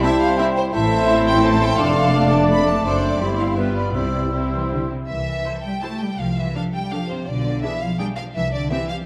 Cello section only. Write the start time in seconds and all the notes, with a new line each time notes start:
0.73 A2
1.79 F2
2.86 F#2
3.21 G2
3.95 C3
4.34 C3
4.52 E3
4.71 D3
4.91 C3
5.09 E3
5.64 G3
5.82 A3
6.00 G3
6.19 F3
6.37 E3
6.54 F3
6.73 G3
6.91 F3
7.09 C3
7.27 D3
7.63 E3
7.81 F3
7.99 G3
8.18 F3
8.35 E3
8.52 D3
8.70 E3
8.89 F3